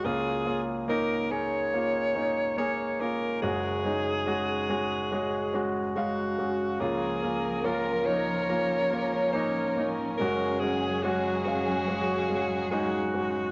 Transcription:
<<
  \new Staff \with { instrumentName = "Alto saxophone" } { \time 4/4 \key des \major \tempo 4 = 71 aes'8 r8 bes'8 des''4. des''8 bes'8 | aes'2~ aes'8 r8 ges'4 | aes'4 bes'8 des''4. des''8 r8 | bes'8 aes'8 ges'8 ges'4. ges'4 | }
  \new Staff \with { instrumentName = "Grand piano" } { \time 4/4 \key des \major <bes des' f'>8 <bes des' f'>8 <bes des' ees'>8 <bes des' aes'>8 <bes des' f'>8 <bes des' ees'>8 <bes des' aes'>8 <bes des' f'>8 | <aes des' ges'>8 <aes des' ees'>8 <aes des' ges'>8 <aes des' ges'>8 <aes des' ges'>8 <aes des' ges'>8 <aes des' f''>8 <aes des' ges'>8 | <bes des' f'>8 <bes des' f'>8 <bes des' f'>8 <bes des' ees'>8 <bes des' f'>8 <bes des' f'>8 <bes des' ees'>8 <bes des' ees'>8 | <aes des' ges'>8 <aes des' ges'>8 <aes des' ges'>8 <aes des' f''>8 <aes des' ges'>8 <aes des' aes'>8 <aes des' ees'>8 <aes des' ges'>8 | }
  \new Staff \with { instrumentName = "Grand piano" } { \clef bass \time 4/4 \key des \major <des, des>1 | <ges,, ges,>1 | <des, des>1 | <ges,, ges,>1 | }
  \new Staff \with { instrumentName = "String section" } { \time 4/4 \key des \major << { r1 | r1 | <f bes'>1 | <ges aes'>1 | } \\ { r1 | r1 | des'1~ | des'1 | } >> }
>>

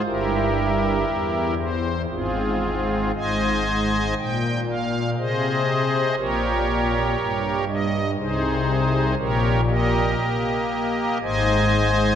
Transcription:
<<
  \new Staff \with { instrumentName = "Pipe organ" } { \time 3/4 \key aes \major \tempo 4 = 60 <e' g' bes'>4. c''8 <c' f' aes'>4 | <c'' ees'' aes''>4 g''8 f''8 <aes' c'' ees''>4 | <g' bes' des''>4. ees''8 <ees' aes' c''>4 | \key ees \mixolydian <g' bes' des''>8 <g' bes' ees''>4. <c'' ees'' aes''>4 | }
  \new Staff \with { instrumentName = "Pipe organ" } { \clef bass \time 3/4 \key aes \major <g,, g,>4 e,4 <aes,, aes,>4 | <aes,, aes,>4 bes,4 c4 | <bes,, bes,>4 g,4 <c, c>4 | \key ees \mixolydian <bes,, bes,>4 bes4 <aes,, aes,>4 | }
>>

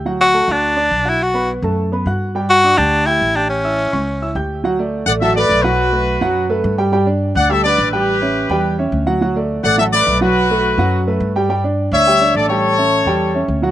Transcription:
<<
  \new Staff \with { instrumentName = "Trumpet section" } { \time 4/4 \key d \major \tempo 4 = 210 r1 | r1 | r1 | r1 |
r4. <d'' fis''>8 <a' e''>8 <b' d''>4 <fis' b'>8~ | <fis' b'>2~ <fis' b'>8 r4. | r4. <d'' fis''>8 <a' e''>8 <b' d''>4 <g' b'>8~ | <g' b'>2~ <g' b'>8 r4. |
r4. <d'' fis''>8 <a' e''>8 <b' d''>4 <fis' b'>8~ | <fis' b'>2~ <fis' b'>8 r4. | r4. <cis'' e''>4. <a' d''>8 <a' cis''>8~ | <a' cis''>2. r4 | }
  \new Staff \with { instrumentName = "Grand piano" } { \time 4/4 \key d \major <fis fis' fis''>4 <a a' a''>8 <fis' fis'' fis'''>4 <d' d'' d'''>4 <fis' fis'' fis'''>8~ | <fis' fis'' fis'''>8 <b b' b''>4 <a a' a''>4 <b b' b''>8 <fis' fis'' fis'''>4 | <g g' g''>4 <d' d'' d'''>8 <g' g'' g'''>4 <g' g'' g'''>4 <g' g'' g'''>8~ | <g' g'' g'''>8 <e' e'' e'''>4 <cis' cis'' cis'''>4 <e' e'' e'''>8 <g' g'' g'''>4 |
<fis fis' fis''>8 <a a' d''>4 <a a' d''>8 <fis fis' fis''>8 <a a' d''>4 <fis fis' fis''>8~ | <fis fis' fis''>8 <a a' b'>4 <fis fis' fis''>4 <a a' b'>4 <g g' g''>8 | <g g' g''>8 <d' d''>4 <d' d''>8 <g g' g''>8 <d' d''>4 <g g' g''>8~ | <g g' g''>8 <cis' cis'' e''>4 <g g' g''>4 <cis' cis'' e''>4 <fis fis' fis''>8 |
<fis fis' fis''>8 <a a' d''>4 <a a' d''>8 <fis fis' fis''>8 <a a' d''>4 <fis fis' fis''>8~ | <fis fis' fis''>8 <a a' b'>4 <fis fis' fis''>4 <a a' b'>4 <g g' g''>8 | <g g' g''>8 <d' d''>4 <d' d''>8 <g g' g''>8 <d' d''>4 <g g' g''>8~ | <g g' g''>8 <cis' cis'' e''>4 <g g' g''>4 <cis' cis'' e''>4 <fis fis' fis''>8 | }
  \new Staff \with { instrumentName = "Tenor saxophone" } { \time 4/4 \key d \major r8 fis'4 d'2 e'8 | fis'4 r2. | r8 fis'4 d'4 e'4 d'8 | cis'2. r4 |
r1 | r1 | r1 | r1 |
r1 | r1 | r1 | r1 | }
  \new Staff \with { instrumentName = "Upright bass" } { \clef bass \time 4/4 \key d \major d,4. d,4. b,,4~ | b,,4. fis,4. g,4~ | g,4. d,4. a,,4~ | a,,4. cis,4. d,4~ |
d,4. a,,4. b,,4~ | b,,4. fis,4. g,4~ | g,4. d,4. a,,4~ | a,,4. e,4. d,4~ |
d,4. a,,4. b,,4~ | b,,4. fis,4. g,4~ | g,4. d,4. a,,4~ | a,,4. e,4. d,4 | }
>>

